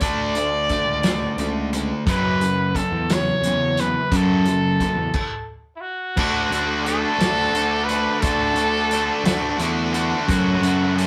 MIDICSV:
0, 0, Header, 1, 6, 480
1, 0, Start_track
1, 0, Key_signature, 2, "major"
1, 0, Tempo, 684151
1, 11, Time_signature, 6, 3, 24, 8
1, 7765, End_track
2, 0, Start_track
2, 0, Title_t, "Tonewheel organ"
2, 0, Program_c, 0, 16
2, 4350, Note_on_c, 0, 69, 60
2, 4353, Note_on_c, 0, 74, 62
2, 4354, Note_on_c, 0, 78, 59
2, 4357, Note_on_c, 0, 86, 68
2, 7197, Note_off_c, 0, 74, 0
2, 7199, Note_off_c, 0, 86, 0
2, 7227, Note_on_c, 0, 73, 62
2, 7234, Note_on_c, 0, 85, 72
2, 7765, Note_off_c, 0, 69, 0
2, 7765, Note_off_c, 0, 73, 0
2, 7765, Note_off_c, 0, 78, 0
2, 7765, Note_off_c, 0, 85, 0
2, 7765, End_track
3, 0, Start_track
3, 0, Title_t, "Trumpet"
3, 0, Program_c, 1, 56
3, 10, Note_on_c, 1, 74, 111
3, 1209, Note_off_c, 1, 74, 0
3, 1476, Note_on_c, 1, 71, 110
3, 1937, Note_on_c, 1, 69, 93
3, 1948, Note_off_c, 1, 71, 0
3, 2198, Note_on_c, 1, 73, 105
3, 2208, Note_off_c, 1, 69, 0
3, 2668, Note_on_c, 1, 71, 94
3, 2678, Note_off_c, 1, 73, 0
3, 2922, Note_on_c, 1, 69, 97
3, 2932, Note_off_c, 1, 71, 0
3, 3865, Note_off_c, 1, 69, 0
3, 4045, Note_on_c, 1, 64, 64
3, 4077, Note_on_c, 1, 66, 92
3, 4087, Note_off_c, 1, 64, 0
3, 4796, Note_off_c, 1, 66, 0
3, 4800, Note_on_c, 1, 69, 112
3, 5503, Note_on_c, 1, 71, 109
3, 5514, Note_off_c, 1, 69, 0
3, 5762, Note_on_c, 1, 69, 109
3, 5773, Note_off_c, 1, 71, 0
3, 6728, Note_off_c, 1, 69, 0
3, 6975, Note_on_c, 1, 66, 87
3, 7699, Note_on_c, 1, 69, 99
3, 7709, Note_off_c, 1, 66, 0
3, 7765, Note_off_c, 1, 69, 0
3, 7765, End_track
4, 0, Start_track
4, 0, Title_t, "Distorted electric guitar"
4, 0, Program_c, 2, 30
4, 12, Note_on_c, 2, 50, 91
4, 16, Note_on_c, 2, 57, 76
4, 20, Note_on_c, 2, 62, 97
4, 237, Note_off_c, 2, 50, 0
4, 239, Note_off_c, 2, 57, 0
4, 241, Note_off_c, 2, 62, 0
4, 254, Note_on_c, 2, 50, 79
4, 259, Note_on_c, 2, 57, 71
4, 468, Note_off_c, 2, 50, 0
4, 471, Note_off_c, 2, 57, 0
4, 493, Note_on_c, 2, 50, 71
4, 499, Note_on_c, 2, 57, 74
4, 708, Note_off_c, 2, 50, 0
4, 711, Note_off_c, 2, 57, 0
4, 736, Note_on_c, 2, 50, 64
4, 738, Note_on_c, 2, 57, 84
4, 949, Note_off_c, 2, 50, 0
4, 950, Note_off_c, 2, 57, 0
4, 977, Note_on_c, 2, 50, 68
4, 979, Note_on_c, 2, 57, 79
4, 1189, Note_off_c, 2, 50, 0
4, 1190, Note_off_c, 2, 57, 0
4, 1215, Note_on_c, 2, 50, 71
4, 1219, Note_on_c, 2, 57, 66
4, 1428, Note_off_c, 2, 50, 0
4, 1430, Note_off_c, 2, 57, 0
4, 1455, Note_on_c, 2, 42, 87
4, 1455, Note_on_c, 2, 49, 84
4, 1462, Note_on_c, 2, 54, 92
4, 1677, Note_off_c, 2, 42, 0
4, 1678, Note_off_c, 2, 49, 0
4, 1681, Note_off_c, 2, 54, 0
4, 1688, Note_on_c, 2, 42, 67
4, 1693, Note_on_c, 2, 49, 76
4, 1904, Note_off_c, 2, 42, 0
4, 1907, Note_off_c, 2, 49, 0
4, 1927, Note_on_c, 2, 42, 66
4, 1931, Note_on_c, 2, 49, 85
4, 2144, Note_off_c, 2, 42, 0
4, 2146, Note_off_c, 2, 49, 0
4, 2177, Note_on_c, 2, 42, 80
4, 2181, Note_on_c, 2, 49, 80
4, 2389, Note_off_c, 2, 42, 0
4, 2391, Note_off_c, 2, 49, 0
4, 2424, Note_on_c, 2, 42, 78
4, 2432, Note_on_c, 2, 49, 70
4, 2632, Note_off_c, 2, 42, 0
4, 2636, Note_off_c, 2, 49, 0
4, 2660, Note_on_c, 2, 42, 61
4, 2665, Note_on_c, 2, 49, 69
4, 2870, Note_off_c, 2, 42, 0
4, 2872, Note_off_c, 2, 49, 0
4, 2898, Note_on_c, 2, 42, 95
4, 2900, Note_on_c, 2, 49, 88
4, 2909, Note_on_c, 2, 54, 89
4, 3119, Note_off_c, 2, 42, 0
4, 3120, Note_off_c, 2, 49, 0
4, 3124, Note_off_c, 2, 54, 0
4, 3142, Note_on_c, 2, 42, 75
4, 3146, Note_on_c, 2, 49, 84
4, 3351, Note_off_c, 2, 42, 0
4, 3353, Note_off_c, 2, 49, 0
4, 3378, Note_on_c, 2, 49, 69
4, 3379, Note_on_c, 2, 42, 70
4, 3589, Note_off_c, 2, 42, 0
4, 3589, Note_off_c, 2, 49, 0
4, 4334, Note_on_c, 2, 50, 89
4, 4341, Note_on_c, 2, 57, 79
4, 4347, Note_on_c, 2, 62, 99
4, 4352, Note_on_c, 2, 66, 89
4, 4567, Note_off_c, 2, 66, 0
4, 4570, Note_on_c, 2, 66, 71
4, 4573, Note_off_c, 2, 62, 0
4, 4576, Note_on_c, 2, 62, 65
4, 4581, Note_off_c, 2, 57, 0
4, 4584, Note_on_c, 2, 57, 60
4, 4810, Note_off_c, 2, 50, 0
4, 4813, Note_on_c, 2, 50, 67
4, 4817, Note_off_c, 2, 57, 0
4, 4819, Note_on_c, 2, 57, 76
4, 4820, Note_off_c, 2, 62, 0
4, 4823, Note_on_c, 2, 62, 72
4, 4826, Note_off_c, 2, 66, 0
4, 4829, Note_on_c, 2, 66, 77
4, 5046, Note_off_c, 2, 66, 0
4, 5049, Note_on_c, 2, 66, 78
4, 5050, Note_off_c, 2, 62, 0
4, 5058, Note_on_c, 2, 62, 68
4, 5065, Note_off_c, 2, 57, 0
4, 5067, Note_on_c, 2, 57, 59
4, 5287, Note_off_c, 2, 50, 0
4, 5295, Note_on_c, 2, 50, 72
4, 5298, Note_off_c, 2, 57, 0
4, 5299, Note_off_c, 2, 62, 0
4, 5300, Note_on_c, 2, 57, 69
4, 5307, Note_on_c, 2, 62, 81
4, 5308, Note_off_c, 2, 66, 0
4, 5311, Note_on_c, 2, 66, 74
4, 5527, Note_off_c, 2, 66, 0
4, 5530, Note_on_c, 2, 66, 61
4, 5533, Note_off_c, 2, 62, 0
4, 5541, Note_on_c, 2, 62, 60
4, 5543, Note_off_c, 2, 57, 0
4, 5546, Note_on_c, 2, 57, 53
4, 5764, Note_off_c, 2, 50, 0
4, 5772, Note_on_c, 2, 50, 103
4, 5773, Note_off_c, 2, 57, 0
4, 5773, Note_off_c, 2, 62, 0
4, 5776, Note_on_c, 2, 57, 91
4, 5782, Note_on_c, 2, 62, 106
4, 5785, Note_off_c, 2, 66, 0
4, 5787, Note_on_c, 2, 66, 97
4, 6008, Note_off_c, 2, 66, 0
4, 6011, Note_on_c, 2, 66, 66
4, 6015, Note_off_c, 2, 62, 0
4, 6023, Note_on_c, 2, 62, 73
4, 6025, Note_off_c, 2, 57, 0
4, 6028, Note_on_c, 2, 57, 63
4, 6244, Note_off_c, 2, 50, 0
4, 6253, Note_on_c, 2, 50, 70
4, 6258, Note_off_c, 2, 62, 0
4, 6259, Note_off_c, 2, 57, 0
4, 6262, Note_on_c, 2, 57, 75
4, 6266, Note_on_c, 2, 62, 73
4, 6267, Note_off_c, 2, 66, 0
4, 6270, Note_on_c, 2, 66, 74
4, 6483, Note_off_c, 2, 66, 0
4, 6486, Note_on_c, 2, 66, 76
4, 6487, Note_off_c, 2, 62, 0
4, 6496, Note_on_c, 2, 62, 72
4, 6501, Note_off_c, 2, 57, 0
4, 6504, Note_on_c, 2, 57, 68
4, 6728, Note_off_c, 2, 50, 0
4, 6737, Note_on_c, 2, 50, 73
4, 6740, Note_off_c, 2, 57, 0
4, 6741, Note_off_c, 2, 62, 0
4, 6743, Note_on_c, 2, 57, 73
4, 6750, Note_on_c, 2, 62, 82
4, 6753, Note_off_c, 2, 66, 0
4, 6755, Note_on_c, 2, 66, 89
4, 6961, Note_off_c, 2, 66, 0
4, 6963, Note_on_c, 2, 66, 65
4, 6968, Note_off_c, 2, 62, 0
4, 6976, Note_on_c, 2, 62, 66
4, 6983, Note_off_c, 2, 57, 0
4, 6986, Note_on_c, 2, 57, 56
4, 7200, Note_off_c, 2, 62, 0
4, 7201, Note_off_c, 2, 50, 0
4, 7212, Note_on_c, 2, 42, 90
4, 7217, Note_on_c, 2, 49, 92
4, 7218, Note_on_c, 2, 54, 99
4, 7219, Note_off_c, 2, 57, 0
4, 7222, Note_on_c, 2, 57, 107
4, 7227, Note_off_c, 2, 66, 0
4, 7227, Note_on_c, 2, 61, 99
4, 7230, Note_on_c, 2, 66, 107
4, 7450, Note_off_c, 2, 66, 0
4, 7452, Note_on_c, 2, 66, 74
4, 7458, Note_off_c, 2, 61, 0
4, 7459, Note_off_c, 2, 57, 0
4, 7460, Note_on_c, 2, 61, 76
4, 7462, Note_on_c, 2, 57, 72
4, 7464, Note_off_c, 2, 54, 0
4, 7466, Note_on_c, 2, 54, 61
4, 7683, Note_off_c, 2, 54, 0
4, 7686, Note_on_c, 2, 54, 66
4, 7695, Note_off_c, 2, 57, 0
4, 7696, Note_off_c, 2, 49, 0
4, 7698, Note_on_c, 2, 57, 71
4, 7700, Note_off_c, 2, 61, 0
4, 7703, Note_on_c, 2, 61, 70
4, 7706, Note_off_c, 2, 66, 0
4, 7709, Note_on_c, 2, 66, 80
4, 7765, Note_off_c, 2, 42, 0
4, 7765, Note_off_c, 2, 54, 0
4, 7765, Note_off_c, 2, 57, 0
4, 7765, Note_off_c, 2, 61, 0
4, 7765, Note_off_c, 2, 66, 0
4, 7765, End_track
5, 0, Start_track
5, 0, Title_t, "Picked electric bass"
5, 0, Program_c, 3, 34
5, 7, Note_on_c, 3, 38, 109
5, 474, Note_off_c, 3, 38, 0
5, 593, Note_on_c, 3, 37, 86
5, 879, Note_off_c, 3, 37, 0
5, 960, Note_on_c, 3, 37, 86
5, 1336, Note_off_c, 3, 37, 0
5, 1443, Note_on_c, 3, 42, 103
5, 1911, Note_off_c, 3, 42, 0
5, 2040, Note_on_c, 3, 40, 80
5, 2323, Note_off_c, 3, 40, 0
5, 2397, Note_on_c, 3, 40, 82
5, 2774, Note_off_c, 3, 40, 0
5, 2888, Note_on_c, 3, 42, 110
5, 3354, Note_off_c, 3, 42, 0
5, 3476, Note_on_c, 3, 40, 82
5, 3574, Note_off_c, 3, 40, 0
5, 4325, Note_on_c, 3, 38, 98
5, 4512, Note_off_c, 3, 38, 0
5, 4562, Note_on_c, 3, 38, 77
5, 4937, Note_off_c, 3, 38, 0
5, 5040, Note_on_c, 3, 38, 84
5, 5230, Note_off_c, 3, 38, 0
5, 5277, Note_on_c, 3, 38, 70
5, 5654, Note_off_c, 3, 38, 0
5, 5768, Note_on_c, 3, 38, 94
5, 5955, Note_off_c, 3, 38, 0
5, 5997, Note_on_c, 3, 38, 84
5, 6375, Note_off_c, 3, 38, 0
5, 6481, Note_on_c, 3, 38, 95
5, 6671, Note_off_c, 3, 38, 0
5, 6722, Note_on_c, 3, 40, 79
5, 7099, Note_off_c, 3, 40, 0
5, 7211, Note_on_c, 3, 42, 105
5, 7398, Note_off_c, 3, 42, 0
5, 7446, Note_on_c, 3, 42, 89
5, 7765, Note_off_c, 3, 42, 0
5, 7765, End_track
6, 0, Start_track
6, 0, Title_t, "Drums"
6, 5, Note_on_c, 9, 42, 82
6, 9, Note_on_c, 9, 36, 96
6, 75, Note_off_c, 9, 42, 0
6, 80, Note_off_c, 9, 36, 0
6, 247, Note_on_c, 9, 42, 69
6, 317, Note_off_c, 9, 42, 0
6, 487, Note_on_c, 9, 42, 56
6, 489, Note_on_c, 9, 36, 71
6, 558, Note_off_c, 9, 42, 0
6, 559, Note_off_c, 9, 36, 0
6, 726, Note_on_c, 9, 42, 88
6, 730, Note_on_c, 9, 38, 99
6, 796, Note_off_c, 9, 42, 0
6, 801, Note_off_c, 9, 38, 0
6, 970, Note_on_c, 9, 42, 65
6, 1040, Note_off_c, 9, 42, 0
6, 1214, Note_on_c, 9, 42, 67
6, 1284, Note_off_c, 9, 42, 0
6, 1450, Note_on_c, 9, 36, 104
6, 1453, Note_on_c, 9, 42, 85
6, 1521, Note_off_c, 9, 36, 0
6, 1524, Note_off_c, 9, 42, 0
6, 1692, Note_on_c, 9, 42, 62
6, 1762, Note_off_c, 9, 42, 0
6, 1930, Note_on_c, 9, 36, 61
6, 1935, Note_on_c, 9, 42, 60
6, 2000, Note_off_c, 9, 36, 0
6, 2005, Note_off_c, 9, 42, 0
6, 2173, Note_on_c, 9, 42, 86
6, 2178, Note_on_c, 9, 38, 92
6, 2243, Note_off_c, 9, 42, 0
6, 2248, Note_off_c, 9, 38, 0
6, 2410, Note_on_c, 9, 42, 68
6, 2481, Note_off_c, 9, 42, 0
6, 2648, Note_on_c, 9, 42, 72
6, 2719, Note_off_c, 9, 42, 0
6, 2888, Note_on_c, 9, 36, 104
6, 2890, Note_on_c, 9, 42, 97
6, 2958, Note_off_c, 9, 36, 0
6, 2960, Note_off_c, 9, 42, 0
6, 3126, Note_on_c, 9, 42, 65
6, 3196, Note_off_c, 9, 42, 0
6, 3369, Note_on_c, 9, 36, 62
6, 3372, Note_on_c, 9, 42, 59
6, 3439, Note_off_c, 9, 36, 0
6, 3442, Note_off_c, 9, 42, 0
6, 3603, Note_on_c, 9, 49, 85
6, 3607, Note_on_c, 9, 36, 88
6, 3673, Note_off_c, 9, 49, 0
6, 3677, Note_off_c, 9, 36, 0
6, 4329, Note_on_c, 9, 49, 112
6, 4330, Note_on_c, 9, 36, 100
6, 4399, Note_off_c, 9, 49, 0
6, 4400, Note_off_c, 9, 36, 0
6, 4577, Note_on_c, 9, 42, 66
6, 4647, Note_off_c, 9, 42, 0
6, 4816, Note_on_c, 9, 42, 59
6, 4886, Note_off_c, 9, 42, 0
6, 5056, Note_on_c, 9, 42, 93
6, 5061, Note_on_c, 9, 38, 96
6, 5126, Note_off_c, 9, 42, 0
6, 5131, Note_off_c, 9, 38, 0
6, 5296, Note_on_c, 9, 42, 67
6, 5367, Note_off_c, 9, 42, 0
6, 5535, Note_on_c, 9, 42, 75
6, 5605, Note_off_c, 9, 42, 0
6, 5770, Note_on_c, 9, 42, 102
6, 5773, Note_on_c, 9, 36, 113
6, 5840, Note_off_c, 9, 42, 0
6, 5843, Note_off_c, 9, 36, 0
6, 6005, Note_on_c, 9, 42, 71
6, 6075, Note_off_c, 9, 42, 0
6, 6252, Note_on_c, 9, 42, 64
6, 6322, Note_off_c, 9, 42, 0
6, 6493, Note_on_c, 9, 42, 100
6, 6498, Note_on_c, 9, 38, 108
6, 6563, Note_off_c, 9, 42, 0
6, 6568, Note_off_c, 9, 38, 0
6, 6732, Note_on_c, 9, 42, 81
6, 6802, Note_off_c, 9, 42, 0
6, 6976, Note_on_c, 9, 42, 70
6, 7046, Note_off_c, 9, 42, 0
6, 7216, Note_on_c, 9, 36, 103
6, 7220, Note_on_c, 9, 42, 88
6, 7286, Note_off_c, 9, 36, 0
6, 7290, Note_off_c, 9, 42, 0
6, 7461, Note_on_c, 9, 42, 73
6, 7531, Note_off_c, 9, 42, 0
6, 7707, Note_on_c, 9, 42, 60
6, 7765, Note_off_c, 9, 42, 0
6, 7765, End_track
0, 0, End_of_file